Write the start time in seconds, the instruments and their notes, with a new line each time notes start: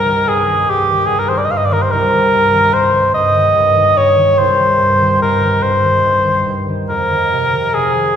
Already playing: harp C2 G2, cor anglais A#4
0.07 harp D#3
0.28 harp G2, cor anglais G#4
0.50 harp D#3
0.69 harp G2, cor anglais G4
0.90 harp D#3
1.07 harp G2, cor anglais G#4
1.19 cor anglais A#4
1.29 harp D#3, cor anglais C5
1.38 cor anglais D5
1.45 cor anglais D#5
1.51 harp G2, cor anglais F5
1.57 cor anglais D#5
1.65 cor anglais D5
1.71 harp D#3, cor anglais A#4
1.82 cor anglais C5
1.91 harp C2, cor anglais A#4
2.14 harp D#3
2.34 harp G2
2.54 harp D#3
2.74 harp G2, cor anglais C5
2.95 harp D#3
3.14 harp G2, cor anglais D#5
3.36 harp D#3
3.56 harp G2
3.76 harp D#3
3.97 harp G2, cor anglais C#5
4.18 harp D#3
4.38 harp C2, cor anglais C5
4.59 harp D#3
4.81 harp G2
5.02 harp D#3
5.22 harp G2, cor anglais A#4
5.43 harp D#3
5.63 harp G2, cor anglais C5
5.85 harp D#3
6.06 harp G2
6.27 harp D#3
6.48 harp G2
6.69 harp D#3
6.89 harp F2, cor anglais A#4
7.10 harp D#3
7.32 harp C3
7.53 harp D#3
7.74 harp C3, cor anglais G#4
7.98 harp D#3